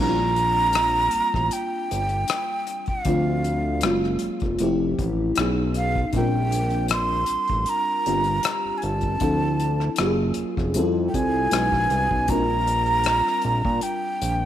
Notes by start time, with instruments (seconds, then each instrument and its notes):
Already playing: analog synth bass A#1, fm electric piano G3
0.00 fm electric piano A#3 C4 D4 E4, flute A#5
0.09 fm electric piano F4
0.36 closed hi-hat
0.73 cross-stick, closed hi-hat
1.11 analog synth bass A1, closed hi-hat
1.34 analog synth bass A1, kick, cross-stick
1.51 flute G5, closed hi-hat
1.91 analog synth bass G1, closed hi-hat
2.09 closed hi-hat
2.28 cross-stick, closed hi-hat
2.67 closed hi-hat
2.86 flute F5, kick, closed hi-hat
3.05 analog synth bass D2, fm electric piano F3 A3 C4 D4 F4, kick, closed hi-hat
3.44 closed hi-hat
3.81 analog synth bass F#1, fm electric piano F#3 G#3, cross-stick, closed hi-hat
3.85 fm electric piano A#3 C#4 F4
4.04 cross-stick
4.19 analog synth bass F1, closed hi-hat
4.40 analog synth bass F1, kick, closed hi-hat
4.59 analog synth bass F1, fm electric piano F3 A3 C4 E4, closed hi-hat
4.63 fm electric piano G4
4.99 analog synth bass A1, kick, closed hi-hat
5.35 analog synth bass B1, fm electric piano F#3 B3 C#4 D#4, cross-stick, closed hi-hat
5.40 fm electric piano G#4
5.74 flute F5, closed hi-hat
5.95 kick
6.13 analog synth bass A#1, fm electric piano G3 C4 D4, flute G5, kick, closed hi-hat
6.17 fm electric piano F4 A#4
6.52 closed hi-hat
6.70 closed hi-hat
6.88 cross-stick, closed hi-hat
6.93 flute C6
7.26 analog synth bass A1, closed hi-hat
7.47 analog synth bass A1, kick, closed hi-hat
7.66 flute A#5, closed hi-hat
8.06 analog synth bass G1, fm electric piano G3 C4 D4 F4 G4, closed hi-hat
8.24 closed hi-hat
8.43 cross-stick, closed hi-hat
8.65 analog synth bass G1
8.78 flute G#5
8.82 analog synth bass G1, flute A5, closed hi-hat
9.01 kick, closed hi-hat
9.20 analog synth bass D2, fm electric piano F3 C4 D4 E4 A4, kick, closed hi-hat
9.60 closed hi-hat
9.80 cross-stick
9.96 analog synth bass F#1, fm electric piano F#3 A#3 C#4, cross-stick, closed hi-hat
10.00 fm electric piano F4 G4
10.07 fm electric piano G#4
10.34 analog synth bass F1, closed hi-hat
10.57 analog synth bass F1, kick, cross-stick
10.74 analog synth bass F2, fm electric piano G3 C4 E4 F4 A4, closed hi-hat
11.09 flute G5
11.14 analog synth bass C2, flute G#5, kick, closed hi-hat
11.51 analog synth bass B1, fm electric piano G#3 C#4 D#4 F#4 B4, cross-stick, closed hi-hat
11.72 analog synth bass A#1, kick, cross-stick
11.90 analog synth bass C2, closed hi-hat
12.11 analog synth bass B1, kick
12.27 analog synth bass A#1, fm electric piano G3 C4 D4 F4, flute A#5, kick, closed hi-hat
12.32 fm electric piano A#4
12.67 closed hi-hat
12.86 closed hi-hat
13.04 cross-stick, closed hi-hat
13.27 cross-stick
13.42 analog synth bass A#1, closed hi-hat
13.65 analog synth bass A#2, kick
13.81 flute G5, closed hi-hat
14.21 analog synth bass A#1, closed hi-hat